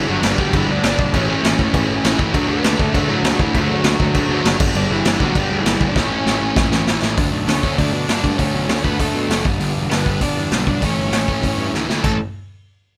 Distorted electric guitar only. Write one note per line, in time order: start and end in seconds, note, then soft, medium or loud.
0.07 0.22 G2 medium
0.07 0.22 D3 medium
0.07 0.21 G3 medium
0.22 0.37 G2 medium
0.22 0.37 D3 loud
0.22 0.38 G3 loud
0.38 0.54 G2 medium
0.38 0.53 D3 loud
0.38 0.53 G3 loud
0.54 0.67 G2 medium
0.54 0.68 D3 medium
0.54 0.68 G3 loud
0.69 0.83 G2 loud
0.69 0.82 D3 loud
0.69 0.82 G3 loud
0.83 0.97 G2 medium
0.83 0.97 D3 medium
0.83 0.98 G3 loud
0.98 1.12 G2 medium
0.98 1.12 D3 medium
0.98 1.13 G3 loud
1.14 1.28 A2 loud
1.14 1.27 E3 loud
1.14 1.28 A3 loud
1.28 1.41 A2 medium
1.28 1.42 E3 medium
1.28 1.43 A3 medium
1.43 1.57 A2 loud
1.43 1.57 E3 loud
1.43 1.57 A3 loud
1.57 1.72 A2 medium
1.57 1.72 E3 loud
1.57 1.74 A3 loud
1.73 1.88 A2 medium
1.73 1.88 E3 medium
1.73 1.88 A3 medium
1.89 2.03 A2 medium
1.89 2.03 E3 loud
1.89 2.04 A3 loud
2.04 2.18 A2 medium
2.04 2.18 E3 medium
2.04 2.18 A3 medium
2.18 2.34 A2 medium
2.18 2.34 E3 medium
2.18 2.35 A3 loud
2.34 2.49 D3 loud
2.34 2.48 A3 loud
2.34 2.48 D4 loud
2.48 2.62 D3 medium
2.48 2.62 A3 medium
2.48 2.63 D4 medium
2.63 2.77 D3 loud
2.63 2.77 A3 loud
2.63 2.77 D4 loud
2.77 2.93 D3 medium
2.77 2.94 A3 loud
2.77 2.95 D4 loud
2.94 3.09 D3 medium
2.94 3.08 A3 medium
2.94 3.09 D4 loud
3.09 3.22 D3 medium
3.09 3.23 A3 loud
3.09 3.25 D4 loud
3.24 3.40 D3 medium
3.24 3.39 A3 loud
3.24 3.40 D4 loud
3.40 3.53 D3 medium
3.40 3.54 A3 medium
3.40 3.54 D4 loud
3.54 3.70 D3 medium
3.54 3.71 A3 loud
3.54 3.70 D4 loud
3.71 3.85 D3 medium
3.71 3.85 A3 medium
3.71 3.87 D4 loud
3.86 4.02 D3 loud
3.86 4.02 A3 loud
3.86 4.01 D4 loud
4.02 4.15 D3 loud
4.02 4.16 A3 loud
4.02 4.16 D4 loud
4.16 4.30 D3 medium
4.16 4.30 A3 medium
4.16 4.29 D4 loud
4.30 4.44 D3 loud
4.30 4.44 A3 loud
4.30 4.44 D4 loud
4.45 4.60 D3 loud
4.45 4.60 A3 medium
4.45 4.60 D4 loud
4.60 4.76 G2 medium
4.60 4.75 D3 loud
4.60 4.75 G3 loud
4.76 4.91 G2 loud
4.76 4.91 D3 loud
4.76 4.92 G3 loud
4.92 5.06 G2 medium
4.92 5.05 D3 medium
4.92 5.05 G3 loud
5.06 5.19 G2 medium
5.06 5.20 D3 loud
5.06 5.20 G3 loud
5.20 5.34 G2 loud
5.20 5.34 D3 loud
5.20 5.34 G3 loud
5.35 5.49 G2 medium
5.35 5.50 D3 medium
5.35 5.50 G3 loud
5.50 5.65 G2 loud
5.50 5.65 D3 loud
5.50 5.64 G3 loud
5.65 5.79 G2 medium
5.65 5.80 D3 loud
5.65 5.80 G3 loud
5.80 5.95 G2 loud
5.80 5.95 D3 loud
5.80 5.96 G3 medium
5.96 6.12 A2 loud
5.96 6.12 E3 loud
5.96 6.11 A3 loud
6.12 6.25 A2 medium
6.12 6.25 E3 loud
6.12 6.25 A3 medium
6.26 6.41 A2 loud
6.26 6.40 E3 loud
6.26 6.39 A3 loud
6.41 6.55 A2 medium
6.41 6.56 E3 medium
6.41 6.56 A3 loud
6.56 6.72 A2 medium
6.56 6.72 E3 loud
6.56 6.71 A3 medium
6.72 6.87 A2 medium
6.72 6.87 E3 loud
6.72 6.87 A3 loud
6.88 7.02 A2 medium
6.88 7.02 E3 loud
6.88 7.02 A3 loud
7.03 7.16 A2 medium
7.03 7.17 E3 medium
7.03 7.16 A3 medium
7.17 7.47 D3 loud
7.17 7.48 A3 loud
7.17 7.48 D4 loud
7.47 7.63 D3 medium
7.47 7.63 A3 medium
7.47 7.63 D4 loud
7.63 7.77 D3 medium
7.63 7.78 A3 medium
7.63 7.79 D4 medium
7.78 8.08 D3 medium
7.78 8.08 A3 medium
7.78 8.09 D4 loud
8.09 8.23 D3 medium
8.09 8.23 A3 medium
8.09 8.23 D4 medium
8.24 8.38 D3 medium
8.24 8.38 A3 medium
8.24 8.40 D4 medium
8.39 8.68 D3 medium
8.39 8.69 A3 loud
8.39 8.70 D4 loud
8.69 8.84 D3 medium
8.69 8.84 A3 medium
8.69 8.83 D4 loud
8.84 8.99 D3 medium
8.84 8.99 A3 medium
8.84 9.00 D4 medium
9.00 9.30 D3 medium
9.00 9.30 A3 loud
9.00 9.30 D4 loud
9.31 9.44 D3 medium
9.31 9.45 A3 medium
9.31 9.45 D4 medium
9.45 9.61 G2 medium
9.45 9.60 D3 medium
9.45 9.59 G3 medium
9.60 9.91 G2 medium
9.60 9.91 D3 loud
9.60 9.90 G3 loud
9.91 10.05 G2 medium
9.91 10.06 D3 medium
9.91 10.07 G3 medium
10.06 10.22 G2 medium
10.06 10.21 D3 medium
10.06 10.20 G3 medium
10.22 10.53 G2 medium
10.22 10.53 D3 medium
10.22 10.52 G3 medium
10.53 10.66 G2 medium
10.53 10.66 D3 medium
10.53 10.67 G3 medium
10.67 10.81 G2 medium
10.67 10.81 D3 medium
10.67 10.82 G3 medium
10.82 11.11 A2 loud
10.82 11.12 E3 medium
10.82 11.12 A3 medium
11.12 11.27 A2 medium
11.12 11.27 E3 medium
11.12 11.26 A3 loud
11.27 11.41 A2 medium
11.27 11.41 E3 medium
11.27 11.42 A3 medium
11.42 11.73 A2 medium
11.42 11.73 E3 medium
11.42 11.74 A3 loud
11.74 11.89 A2 medium
11.74 11.88 E3 medium
11.74 11.88 A3 medium
11.89 12.02 A2 medium
11.89 12.03 E3 medium
11.89 12.03 A3 medium
12.03 12.16 A2 medium
12.03 12.16 E3 medium
12.03 12.16 A3 loud